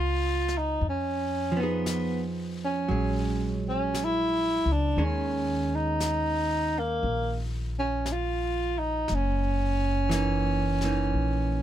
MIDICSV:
0, 0, Header, 1, 5, 480
1, 0, Start_track
1, 0, Key_signature, -5, "minor"
1, 0, Tempo, 1032702
1, 383, Time_signature, 4, 2, 24, 8
1, 5403, End_track
2, 0, Start_track
2, 0, Title_t, "Tenor saxophone"
2, 0, Program_c, 0, 66
2, 0, Note_on_c, 0, 65, 64
2, 267, Note_on_c, 0, 63, 58
2, 274, Note_off_c, 0, 65, 0
2, 400, Note_off_c, 0, 63, 0
2, 413, Note_on_c, 0, 61, 62
2, 747, Note_on_c, 0, 59, 59
2, 754, Note_off_c, 0, 61, 0
2, 1037, Note_off_c, 0, 59, 0
2, 1230, Note_on_c, 0, 61, 64
2, 1672, Note_off_c, 0, 61, 0
2, 1712, Note_on_c, 0, 61, 62
2, 1879, Note_on_c, 0, 64, 66
2, 1886, Note_off_c, 0, 61, 0
2, 2194, Note_on_c, 0, 62, 61
2, 2201, Note_off_c, 0, 64, 0
2, 2343, Note_on_c, 0, 61, 66
2, 2350, Note_off_c, 0, 62, 0
2, 2671, Note_on_c, 0, 63, 70
2, 2678, Note_off_c, 0, 61, 0
2, 3156, Note_on_c, 0, 58, 67
2, 3163, Note_off_c, 0, 63, 0
2, 3440, Note_off_c, 0, 58, 0
2, 3621, Note_on_c, 0, 61, 64
2, 3774, Note_on_c, 0, 65, 66
2, 3781, Note_off_c, 0, 61, 0
2, 4083, Note_on_c, 0, 63, 60
2, 4090, Note_off_c, 0, 65, 0
2, 4251, Note_on_c, 0, 61, 75
2, 4258, Note_off_c, 0, 63, 0
2, 5403, Note_off_c, 0, 61, 0
2, 5403, End_track
3, 0, Start_track
3, 0, Title_t, "Hollow-body jazz guitar"
3, 0, Program_c, 1, 26
3, 706, Note_on_c, 1, 53, 36
3, 729, Note_on_c, 1, 59, 36
3, 744, Note_on_c, 1, 63, 36
3, 758, Note_on_c, 1, 68, 44
3, 1338, Note_off_c, 1, 53, 0
3, 1341, Note_on_c, 1, 54, 41
3, 1350, Note_off_c, 1, 59, 0
3, 1353, Note_on_c, 1, 56, 39
3, 1358, Note_off_c, 1, 63, 0
3, 1365, Note_off_c, 1, 68, 0
3, 2301, Note_off_c, 1, 54, 0
3, 2307, Note_off_c, 1, 56, 0
3, 2314, Note_on_c, 1, 51, 33
3, 2316, Note_on_c, 1, 61, 38
3, 2319, Note_on_c, 1, 56, 34
3, 4225, Note_off_c, 1, 51, 0
3, 4226, Note_off_c, 1, 61, 0
3, 4228, Note_off_c, 1, 56, 0
3, 4692, Note_on_c, 1, 52, 39
3, 4709, Note_on_c, 1, 58, 40
3, 4717, Note_on_c, 1, 63, 41
3, 5031, Note_off_c, 1, 52, 0
3, 5034, Note_off_c, 1, 58, 0
3, 5037, Note_on_c, 1, 52, 30
3, 5040, Note_on_c, 1, 58, 29
3, 5047, Note_off_c, 1, 63, 0
3, 5052, Note_on_c, 1, 63, 34
3, 5403, Note_off_c, 1, 52, 0
3, 5403, Note_off_c, 1, 58, 0
3, 5403, Note_off_c, 1, 63, 0
3, 5403, End_track
4, 0, Start_track
4, 0, Title_t, "Upright bass"
4, 0, Program_c, 2, 32
4, 0, Note_on_c, 2, 37, 61
4, 364, Note_off_c, 2, 37, 0
4, 378, Note_on_c, 2, 41, 57
4, 1321, Note_off_c, 2, 41, 0
4, 1344, Note_on_c, 2, 34, 60
4, 2135, Note_off_c, 2, 34, 0
4, 2163, Note_on_c, 2, 37, 52
4, 2297, Note_off_c, 2, 37, 0
4, 2308, Note_on_c, 2, 39, 61
4, 3245, Note_off_c, 2, 39, 0
4, 3268, Note_on_c, 2, 34, 64
4, 4204, Note_off_c, 2, 34, 0
4, 4228, Note_on_c, 2, 30, 59
4, 5164, Note_off_c, 2, 30, 0
4, 5176, Note_on_c, 2, 34, 59
4, 5403, Note_off_c, 2, 34, 0
4, 5403, End_track
5, 0, Start_track
5, 0, Title_t, "Drums"
5, 225, Note_on_c, 9, 38, 20
5, 271, Note_off_c, 9, 38, 0
5, 384, Note_on_c, 9, 25, 28
5, 865, Note_off_c, 9, 25, 0
5, 865, Note_on_c, 9, 25, 30
5, 865, Note_on_c, 9, 38, 33
5, 865, Note_on_c, 9, 44, 43
5, 912, Note_off_c, 9, 38, 0
5, 912, Note_off_c, 9, 44, 0
5, 1354, Note_off_c, 9, 25, 0
5, 1354, Note_on_c, 9, 25, 24
5, 1833, Note_off_c, 9, 25, 0
5, 1833, Note_on_c, 9, 25, 30
5, 1833, Note_on_c, 9, 38, 31
5, 1833, Note_on_c, 9, 44, 43
5, 1880, Note_off_c, 9, 38, 0
5, 1880, Note_off_c, 9, 44, 0
5, 2314, Note_off_c, 9, 25, 0
5, 2314, Note_on_c, 9, 25, 27
5, 2790, Note_off_c, 9, 25, 0
5, 2790, Note_on_c, 9, 25, 28
5, 2790, Note_on_c, 9, 38, 33
5, 2790, Note_on_c, 9, 44, 43
5, 2837, Note_off_c, 9, 38, 0
5, 2837, Note_off_c, 9, 44, 0
5, 3265, Note_off_c, 9, 25, 0
5, 3265, Note_on_c, 9, 25, 24
5, 3745, Note_off_c, 9, 25, 0
5, 3745, Note_on_c, 9, 25, 26
5, 3745, Note_on_c, 9, 38, 30
5, 3745, Note_on_c, 9, 44, 34
5, 3791, Note_off_c, 9, 38, 0
5, 3791, Note_off_c, 9, 44, 0
5, 4220, Note_off_c, 9, 25, 0
5, 4220, Note_on_c, 9, 25, 30
5, 4220, Note_on_c, 9, 38, 21
5, 4267, Note_off_c, 9, 38, 0
5, 4700, Note_off_c, 9, 25, 0
5, 4700, Note_on_c, 9, 25, 30
5, 4700, Note_on_c, 9, 38, 33
5, 4700, Note_on_c, 9, 44, 45
5, 4746, Note_off_c, 9, 38, 0
5, 4746, Note_off_c, 9, 44, 0
5, 5024, Note_on_c, 9, 38, 19
5, 5070, Note_off_c, 9, 38, 0
5, 5177, Note_off_c, 9, 25, 0
5, 5177, Note_on_c, 9, 25, 30
5, 5403, Note_off_c, 9, 25, 0
5, 5403, End_track
0, 0, End_of_file